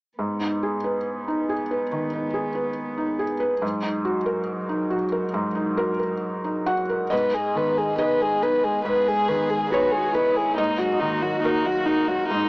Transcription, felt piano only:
0.19 G#2
0.41 D#4
0.63 G#4
0.84 B4
1.28 D#4
1.49 G#4
1.71 B4
1.92 D#3
2.13 D#4
2.34 G#4
2.55 B4
2.98 D#4
3.19 G#4
3.40 B4
3.62 G#2
3.83 D#4
4.05 F#4
4.26 A#4
4.69 D#4
4.90 F#4
5.12 A#4
5.34 G#2
5.55 D#4
5.77 F#4 A#4
5.99 A#4
6.44 D#4
6.66 F#4 F#5
6.89 A#4
7.10 G#2 D#5
7.55 D#3
7.98 D#4 G#4 B4 D#5
8.41 D#4
8.85 G#2 B4
9.28 D#3
9.72 D#4 G#4 B4 C#5
10.15 D#5
10.58 G#2 D#5
11.01 D#3
11.44 D#4 F#4 A#4
11.86 D#4
12.30 G#2

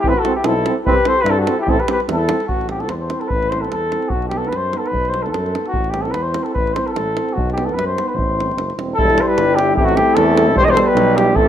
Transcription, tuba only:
0.04 A1
0.44 B1
0.86 C2
1.24 G2
1.66 A1
2.08 E2
2.48 A1
2.89 E2
3.32 A1
3.73 E2
4.12 B1
4.52 F#2
4.92 B1
5.33 F#2
5.73 A1
6.15 E2
6.55 A1
6.95 A1
7.36 B1
7.74 F#2
8.14 A1
8.55 F#1
8.76 E1
8.97 E1
9.37 G1
9.78 A1
10.16 E2
10.55 E1
10.95 B1
11.34 A1

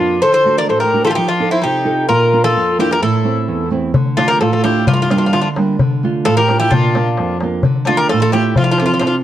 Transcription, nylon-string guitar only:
Already playing: F2
0.00 A#3 D4 F4
0.23 D3
0.45 A3 D4 F#4
0.69 A2
0.93 A3 D4 F#4
1.17 F3
1.40 D#4 F4 A4
1.64 C3
1.85 D#4 F4 A4
2.09 A#2
2.33 A#3 D4 F4
2.56 F2
2.79 A#3 D4 F4
3.02 A2
3.24 A3 C4 E4
3.48 E2
3.70 A3 C4 E4
3.94 D3
4.17 A3 D4 F4
4.41 A2
4.64 A3 D4 F4
4.88 G2
5.10 G3 A#3 D4
5.34 D3
5.57 G3 A#3 D4
5.80 D3
6.03 A3 D4 F4
6.27 A2
6.49 A3 D4 F4
6.73 A#2
6.95 A#3 D4 F4
7.19 F2
7.42 A#3 D4 F4
7.64 D3
7.88 A3 D4 F4
8.13 A2
8.34 A3 D4 F4
8.58 F3
8.81 C4 F4 A4
9.02 C3

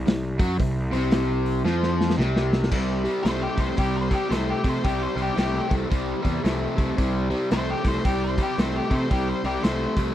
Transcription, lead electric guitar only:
3.24 C5
3.42 G4
3.60 C5
3.78 G4
3.96 C5
4.12 G4
4.31 C5
4.50 G4
4.69 C5
4.84 G4
5.03 C5
5.22 G4
5.39 G4
7.53 C5
7.70 G4
7.88 C5
8.05 G4
8.24 C5
8.43 G4
8.60 C5
8.76 G4
8.94 C5
9.11 G4
9.29 C5
9.46 G4
9.63 C5

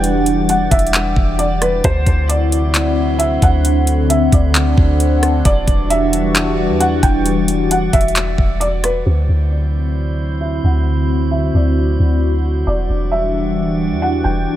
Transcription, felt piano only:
0.49 F#5
0.71 E5
1.39 D5
1.62 B4
1.85 C5
2.29 D5
3.19 E5
3.43 F#5
4.10 E5
4.33 D5
5.45 D5
5.90 E5
6.80 F#5
7.03 G5
7.71 F#5
7.93 E5
8.60 D5
8.84 B4
9.07 C5
9.51 D5
10.41 E5
10.65 F#5
11.31 E5
11.55 D5
12.67 D5
13.12 E5
14.02 F#5
14.24 G5

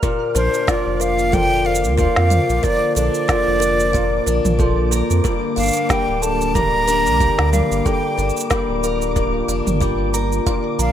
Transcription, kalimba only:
0.03 A#4
0.35 A#4
0.67 F5
1.00 A#4
1.32 A4
1.65 A#4
1.97 A#4
2.30 F5
2.63 A#4
2.95 A4
3.28 A#4
3.60 A#4
3.93 F5
4.26 A#4
4.59 A4
4.91 A#4
5.24 A#4
5.56 F5
5.89 A#4
6.22 A4
6.55 A#4
6.88 A#4
7.20 F5
7.53 A#4
7.86 A4
8.18 A#4
8.50 A#4
8.84 F5
9.16 A#4
9.48 F5
9.81 D5
10.14 A#5
10.46 F5
10.79 A#5

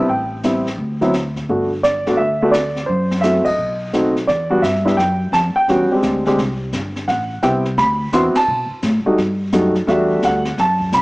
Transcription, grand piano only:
Already playing: A5
0.09 G5
0.44 G3 B3 C4 E4
1.01 F#3 B3 C4 E4
1.49 A3 B3 D4 F#4
1.83 D5
2.07 A3 B3 D4 F#4
2.17 E5
2.42 A3 B3 D4 F#4
2.51 D5
2.86 C5
3.21 A3 C4 E4 F#4 E5
3.45 D#5
3.93 A3 C4 D#4 F#4
4.27 D5
4.50 G3 B3 D4 F#4
4.62 E5
4.85 G3 B3 D4 E4
4.97 G5
5.33 A5
5.56 G5
5.69 G3 B3 C#4 F#4
5.91 G#3 C4 D4 G4
6.26 G#3 C4 D4 G4
7.08 F#5
7.42 B3 C4 E4 G4 G5
7.78 B5
8.13 B3 C4 E4 F#4 C6
8.36 A5
9.06 G3 A3 D#4 F#4
9.53 G3 A3 D#4 F#4
9.87 G3 A3 D4 F#4 E5
10.25 F#5
10.60 A5
10.94 B5

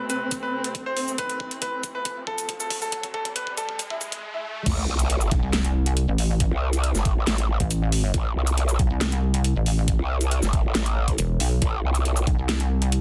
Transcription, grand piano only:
0.10 B4
0.43 B4
0.86 C5
1.18 B4
1.62 B4
1.95 B4
2.27 A4
2.60 A4
2.82 A4
3.14 A4
3.36 B4
3.57 A4
3.90 E4
4.34 E4

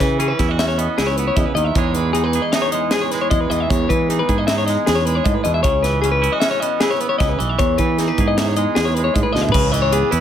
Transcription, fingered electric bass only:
0.00 C#3
0.40 E2
0.98 C#2
1.37 E2
1.55 D#2
1.75 E2
3.31 E2
3.50 E2
3.70 E2
3.90 E3
4.29 G#2
4.88 E2
5.26 G#2
5.46 E2
5.64 C#2
7.20 C#2
7.40 B1
7.60 E2
7.79 E3
8.18 G#2
8.77 E2
9.16 G#2
9.34 D2
9.55 C#2
10.12 E2

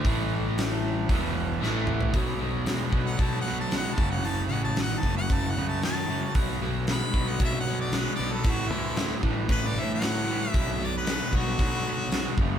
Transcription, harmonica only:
3.06 F#5
3.22 A5
3.41 F#5
3.60 A5
3.77 F#5
3.94 A5
4.11 F#5
4.26 A5
4.48 F#5
4.64 A5
4.83 F#5
4.99 A5
5.17 F#5
5.34 A5
5.50 F#5
5.69 A5
5.85 A5
6.91 B5
7.28 F#5
7.45 E5
7.60 F#5
7.81 D5
7.97 B4
8.15 D5
8.32 A4
8.50 F#4
8.68 E4
9.52 B4
9.67 D5
9.80 E5
9.94 F#5
10.49 E5
10.71 E5
10.85 D5
10.97 B4
11.36 F#4

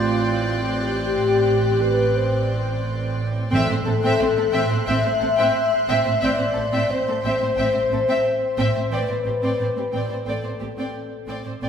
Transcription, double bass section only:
Already playing: A1
3.53 A1
3.87 A1
4.21 A1
4.54 A1
4.88 A1
5.22 A1
5.89 A1
6.24 A1
6.57 A1
6.91 A1
7.24 A1
7.58 A1
7.91 A1
8.58 A1
8.92 A1
9.26 A1
9.60 A1
9.94 A1
10.27 A1
10.61 A1
11.27 A1
11.61 A1

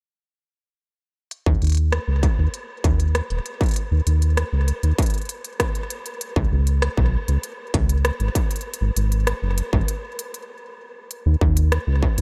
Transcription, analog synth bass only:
1.46 D#2
1.62 D#2
2.08 C#2
2.38 D#2
2.84 D#2
3.30 D#1
3.91 D#2
4.07 D#2
4.53 C#2
4.83 D#2
6.36 C#2
6.52 C#2
6.97 B1
7.28 C#2
7.74 C#2
8.20 G#1
8.81 G#1
8.96 G#1
9.42 F#1
9.73 G#1
11.26 D#2
11.41 D#2
11.87 C#2
12.18 D#2

